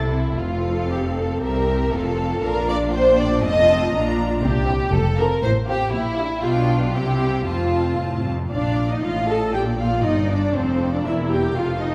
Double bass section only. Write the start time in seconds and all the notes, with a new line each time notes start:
Already playing: C2
0.40 F1
1.42 C2
1.93 F1
2.44 A#1
3.44 F1
3.94 A#1
4.43 C2
4.92 F1
5.43 A1
5.92 A#1
6.42 B1
6.93 C2
7.45 F1
8.51 A#1
9.03 A1
9.54 A#1
10.04 G1
10.55 F1
11.05 E1
11.56 F1